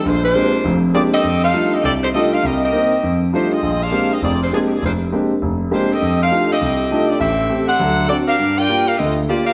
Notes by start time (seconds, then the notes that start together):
0.05 A#1 G#3 D4 F4 C5
0.24 G#3 D4 F4 C5
0.34 G#3 A#3 C4 D4 G4
0.64 F1 F2
0.94 G#3 A#3 C4 D4 F4 G4 G#4 D5
1.14 C4 G4 A4 D#5
1.23 F2
1.44 D#4 A4 C5 F5
1.53 G3 A3 D4 D#4 F4
1.74 C4 G4 A4 D#5
1.84 C2 C4 G4 A4 D5
2.04 A3 D#4 G4 C5
2.14 G3 A3 C4 D4 D#4 F4 G4 A4 D#5
2.34 D#4 A4 C5 F5
2.43 C2 C4 G4 A#4 D#5
2.64 C4 G4 A#4 D#5
2.72 A#3 C4 D#4
3.03 F2
3.33 G3 A3 D4 D#4 F4 G4 C5
3.53 C4 F4 G#4 D#5
3.62 A#1
3.83 D4 G#4 C5 F5
3.92 G#3 A#3 C4 D4 G4
4.12 C4 F4 G#4 D#5
4.22 F1 F2 C4 F4 G#4 D5
4.43 G#3 D4 F4 C5
4.53 F3 G#3 A#3 C4 D4 G4 G#4
4.67 G4
4.73 F3 C4 D4 G#4
4.82 F1 G#3 D4 F4 C5
5.12 G#3 A#3 C4 D4 G4
5.42 F1
5.71 G#3 A#3 C4 D4 F4 G4 C5
5.92 C4 G4 A4 D#5
6.01 F2
6.22 D#4 A4 C5 F5
6.31 A3 D4 D#4 F4 G4
6.52 C4 G4 A4 D#5
6.61 C2
6.91 A3 D4 D#4 F4 G4
7.10 C4 G4 A4 D5
7.20 A1 C4 G4 A4 E5
7.49 A3 C4 G4
7.68 D4 A4 C5 F#5
7.80 D2 F#3
8.08 C4 D4 F#4 A4 D5
8.28 D4 G4 A#4 F5
8.39 G2
8.58 F4 A#4 D5 G5
8.69 A#3 F4 G4
8.87 D4 G4 A#4 F5
8.98 D2 C4 F4 A4 D#5
9.29 A#3 F4 G4 D5
9.46 D4 G4 A#4 F5